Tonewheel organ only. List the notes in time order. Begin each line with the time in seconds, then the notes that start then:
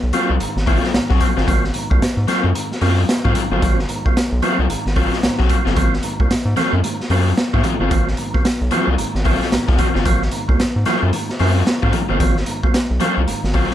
0.13 F#3 A#3 C4 F4
0.40 G#2 D#3
0.67 F#3 A#3 C4 F4
0.83 C4 F4
0.94 G#2 D#3
1.20 F#3 A#3 C4 F4
1.37 C4 F4
1.47 F#3 A#3 C4 F4
1.75 G#2 D#3
1.90 F#3 A#3 C4 F4
2.28 F#3 A#3 C4 F4
2.55 G#2 D#3
2.81 F#3 A#3 C4 F4
2.98 C4 F4
3.24 F#3 A#3 C4 F4
3.36 G#2 D#3
3.51 F#3 A#3 C4 F4
3.63 F#3 A#3 C4 F4
3.89 G#2 D#3
4.05 F#3 A#3 C4 F4
4.42 F#3 A#3 C4 F4
4.70 G#2 D#3
4.96 F#3 A#3 C4 F4
5.13 C4 F4
5.23 G#2 D#3
5.50 F#3 A#3 C4 F4
5.66 C4 F4
5.76 F#3 A#3 C4 F4
6.04 G#2 D#3
6.20 F#3 A#3 C4 F4
6.57 F#3 A#3 C4 F4
6.84 G#2 D#3
7.11 F#3 A#3 C4 F4
7.27 C4 F4
7.53 F#3 A#3 C4 F4
7.64 G#2 D#3
7.80 F#3 A#3 C4 F4
7.91 F#3 A#3 C4 F4
8.18 G#2 D#3
8.34 F#3 A#3 C4 F4
8.71 F#3 A#3 C4 F4
8.99 G#2 D#3
9.25 F#3 A#3 C4 F4
9.42 C4 F4
9.52 G#2 D#3
9.79 F#3 A#3 C4 F4
9.95 C4 F4
10.05 F#3 A#3 C4 F4
10.32 G#2 D#3
10.48 F#3 A#3 C4 F4
10.86 F#3 A#3 C4 F4
11.13 G#2 D#3
11.40 F#3 A#3 C4 F4
11.56 C4 F4
11.83 F#3 A#3 C4 F4
11.93 G#2 D#3
12.09 F#3 A#3 C4 F4
12.20 F#3 A#3 C4 F4
12.47 G#2 D#3
12.63 F#3 A#3 C4 F4
13.00 F#3 A#3 C4 F4
13.27 G#2 D#3
13.54 F#3 A#3 C4 F4
13.71 C4 F4